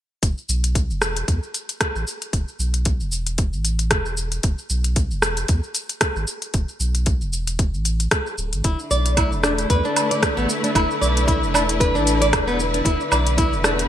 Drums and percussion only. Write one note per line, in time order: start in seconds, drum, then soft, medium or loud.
0.23 kick loud
0.23 closed hi-hat medium
0.23 shaker soft
0.38 shaker soft
0.49 shaker medium
0.64 closed hi-hat soft
0.64 shaker soft
0.75 kick medium
0.75 closed hi-hat soft
0.75 shaker soft
0.90 shaker soft
1.02 cross-stick medium
1.02 shaker medium
1.17 closed hi-hat soft
1.17 shaker soft
1.28 kick loud
1.28 closed hi-hat medium
1.28 shaker soft
1.43 shaker soft
1.54 closed hi-hat soft
1.54 shaker medium
1.69 closed hi-hat soft
1.69 shaker soft
1.81 kick loud
1.81 cross-stick medium
1.81 closed hi-hat medium
1.81 shaker soft
1.96 shaker soft
2.07 shaker medium
2.22 closed hi-hat soft
2.22 shaker soft
2.33 kick loud
2.33 closed hi-hat medium
2.33 shaker soft
2.48 shaker soft
2.60 shaker medium
2.74 closed hi-hat soft
2.74 shaker soft
2.85 kick medium
2.85 closed hi-hat medium
2.85 shaker soft
3.00 shaker soft
3.12 shaker medium
3.27 closed hi-hat soft
3.27 shaker soft
3.38 kick loud
3.38 closed hi-hat soft
3.38 shaker soft
3.53 shaker soft
3.65 closed hi-hat soft
3.65 shaker medium
3.79 closed hi-hat soft
3.79 shaker soft
3.91 kick loud
3.91 cross-stick medium
3.91 closed hi-hat medium
3.91 shaker soft
4.06 shaker soft
4.17 shaker medium
4.32 closed hi-hat soft
4.32 shaker soft
4.43 kick loud
4.43 closed hi-hat medium
4.43 shaker soft
4.58 shaker soft
4.70 shaker medium
4.84 closed hi-hat soft
4.84 shaker soft
4.96 kick loud
4.96 closed hi-hat soft
4.96 shaker soft
5.11 shaker soft
5.22 cross-stick medium
5.22 shaker medium
5.37 closed hi-hat soft
5.37 shaker soft
5.48 kick loud
5.48 closed hi-hat soft
5.48 shaker soft
5.63 shaker soft
5.75 closed hi-hat soft
5.75 shaker medium
5.89 closed hi-hat soft
5.89 shaker soft
6.01 kick loud
6.01 cross-stick medium
6.01 closed hi-hat medium
6.01 shaker soft
6.16 shaker soft
6.27 shaker medium
6.42 closed hi-hat soft
6.42 shaker soft
6.54 kick loud
6.54 closed hi-hat soft
6.54 shaker soft
6.68 shaker soft
6.80 shaker medium
6.95 closed hi-hat soft
6.95 shaker soft
7.06 kick medium
7.06 closed hi-hat soft
7.06 shaker soft
7.21 shaker soft
7.33 shaker medium
7.47 closed hi-hat soft
7.47 shaker soft
7.59 kick loud
7.59 closed hi-hat soft
7.59 shaker soft
7.74 shaker soft
7.85 closed hi-hat soft
7.85 shaker medium
8.00 closed hi-hat soft
8.00 shaker soft
8.11 kick loud
8.11 cross-stick medium
8.11 closed hi-hat medium
8.11 shaker soft
8.26 shaker soft
8.38 shaker medium
8.53 closed hi-hat soft
8.53 shaker soft
8.64 kick loud
8.64 closed hi-hat soft
8.64 shaker soft
8.79 shaker soft
8.91 shaker medium
9.06 closed hi-hat soft
9.06 shaker soft
9.17 kick medium
9.17 closed hi-hat medium
9.17 low woodblock medium
9.17 shaker soft
9.32 shaker soft
9.43 cross-stick medium
9.43 shaker medium
9.58 closed hi-hat soft
9.58 shaker soft
9.70 kick loud
9.70 closed hi-hat soft
9.70 shaker soft
9.85 shaker soft
9.96 closed hi-hat soft
9.96 low woodblock medium
9.96 shaker medium
10.11 closed hi-hat soft
10.11 shaker soft
10.23 kick medium
10.23 cross-stick medium
10.23 closed hi-hat soft
10.23 shaker soft
10.38 shaker soft
10.49 shaker medium
10.64 closed hi-hat soft
10.64 shaker soft
10.75 kick loud
10.75 closed hi-hat medium
10.75 low woodblock medium
10.75 shaker soft
10.91 shaker soft
11.02 shaker medium
11.17 closed hi-hat soft
11.17 shaker soft
11.28 kick medium
11.28 closed hi-hat medium
11.28 shaker soft
11.43 shaker soft
11.55 low woodblock medium
11.55 shaker medium
11.69 closed hi-hat soft
11.69 shaker soft
11.81 kick medium
11.81 closed hi-hat soft
11.81 shaker soft
11.96 shaker soft
12.07 closed hi-hat medium
12.07 shaker medium
12.22 closed hi-hat soft
12.22 shaker soft
12.33 kick loud
12.33 cross-stick medium
12.33 closed hi-hat medium
12.33 low woodblock medium
12.33 shaker soft
12.48 shaker soft
12.60 shaker medium
12.74 closed hi-hat soft
12.74 shaker soft
12.86 kick loud
12.86 closed hi-hat medium
12.86 shaker soft
13.01 shaker soft
13.12 low woodblock medium
13.12 shaker medium
13.27 closed hi-hat soft
13.27 shaker soft
13.38 kick medium
13.38 closed hi-hat medium
13.38 shaker soft
13.53 shaker soft
13.64 cross-stick medium
13.64 shaker medium
13.79 closed hi-hat soft
13.79 shaker soft